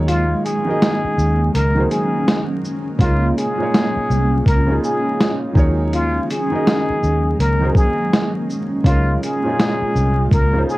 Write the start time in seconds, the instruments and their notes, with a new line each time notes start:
Already playing: fingered electric bass D#2, felt piano D#3 F#3 D#4 G#4 A#4 C#5, ambient pad F#3 G#3 A#3 C#4
0.08 muted trumpet F4, closed hi-hat
0.45 muted trumpet G#4, closed hi-hat, shaker
0.65 felt piano D#3 D#4 F#4 G#4
0.69 felt piano A#4 D#5
0.82 snare, closed hi-hat
1.04 muted fingered electric bass stroke
1.18 fingered electric bass D#2, shaker
1.54 fingered electric bass C#2, muted trumpet A#4, closed hi-hat
1.75 felt piano D#3 D#4 F#4 G#4
1.79 felt piano A#4 C5
1.91 muted trumpet G#4, closed hi-hat, shaker
2.28 snare, closed hi-hat
2.65 shaker
2.98 fingered electric bass C#2, felt piano C#3 C#4 D#4, ambient pad F4, muted trumpet F4, kick, closed hi-hat
3.03 felt piano F4 A#4
3.38 muted trumpet G#4, closed hi-hat, shaker
3.58 felt piano A#2 C#4 D#4
3.62 felt piano F4 C#5
3.74 snare, closed hi-hat
3.97 muted fingered electric bass stroke
4.10 fingered electric bass C2, shaker
4.46 fingered electric bass C#2, muted trumpet A#4, kick, closed hi-hat
4.66 felt piano C#3 C#4 D#4
4.71 felt piano F4 G#4
4.83 muted trumpet G#4, shaker
5.20 snare, closed hi-hat
5.53 fingered electric bass D#2, felt piano D#3 F#3 D#4 G#4, ambient pad F#3 G#3, kick
5.57 felt piano A#4 C#5, shaker
5.93 muted trumpet F4, closed hi-hat
6.30 muted trumpet G#4, closed hi-hat, shaker
6.50 felt piano D#3 D#4 F#4 G#4
6.54 felt piano A#4 D#5
6.67 snare, closed hi-hat
6.90 muted fingered electric bass stroke
7.03 fingered electric bass D#2, shaker
7.39 fingered electric bass C#2, muted trumpet A#4, closed hi-hat
7.60 felt piano D#3 D#4 F#4 G#4
7.64 felt piano A#4 C5
7.75 muted trumpet G#4, kick, shaker
8.13 snare, closed hi-hat
8.50 shaker
8.84 fingered electric bass C#2, felt piano C#3 C#4 D#4, ambient pad A#3 F4, muted trumpet F4, kick, closed hi-hat
8.88 felt piano F4 A#4
9.23 muted trumpet G#4, closed hi-hat, shaker
9.44 felt piano A#2 C#4 D#4
9.48 felt piano F4 G#4
9.60 snare, closed hi-hat
9.82 muted fingered electric bass stroke
9.95 fingered electric bass C2, shaker
10.31 fingered electric bass C#2, muted trumpet A#4, kick, closed hi-hat
10.53 felt piano C#3 C#4 D#4
10.57 felt piano F4 C5
10.69 muted trumpet G#4, shaker